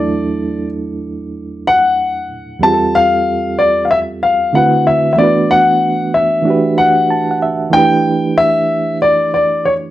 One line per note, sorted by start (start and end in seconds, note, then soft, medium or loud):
0.00 2.24 E2 medium
0.00 2.25 F#3 medium
0.00 2.26 A3 medium
0.00 2.27 D4 medium
0.00 2.28 E4 medium
0.00 2.28 A4 medium
0.00 0.66 D5 medium
1.67 2.65 F#5 medium
2.59 4.48 E2 medium
2.59 4.49 G3 medium
2.59 4.49 C4 medium
2.59 2.95 A5 loud
2.64 4.51 F4 medium
2.64 4.50 G4 medium
2.64 2.72 G#4 medium
2.74 4.55 A4 medium
2.95 3.60 F5 loud
3.59 3.83 D5 medium
3.85 3.89 F5 medium
3.91 3.98 E5 medium
4.23 4.55 F5 medium
4.53 5.17 D3 medium
4.53 5.15 A3 medium
4.53 5.17 C4 soft
4.53 5.18 E4 soft
4.53 5.18 F#4 soft
4.53 4.87 F#5 medium
4.57 5.19 B4 medium
4.87 5.11 E5 medium
5.13 6.41 E3 medium
5.13 6.42 A3 medium
5.13 5.17 E5 medium
5.18 6.42 B3 medium
5.18 6.43 D4 soft
5.18 6.44 F#4 medium
5.18 5.50 D5 medium
5.23 6.45 B4 medium
5.51 6.15 F#5 loud
6.14 7.37 E5 medium
6.42 7.68 E3 soft
6.42 7.69 A3 soft
6.42 7.70 D4 medium
6.47 7.71 F#4 medium
6.47 7.71 G4 medium
6.47 7.72 B4 medium
6.78 7.37 F#5 medium
7.10 7.28 A5 medium
7.31 7.40 F#5 medium
7.42 7.71 E5 medium
7.70 9.90 E3 medium
7.70 9.91 A3 medium
7.70 9.91 D4 medium
7.70 8.38 G5 loud
7.75 9.91 E4 medium
7.75 9.91 G4 medium
7.75 9.91 B4 medium
8.38 8.96 E5 medium
9.02 9.30 D5 medium
9.34 9.65 D5 medium
9.65 9.72 C#5 medium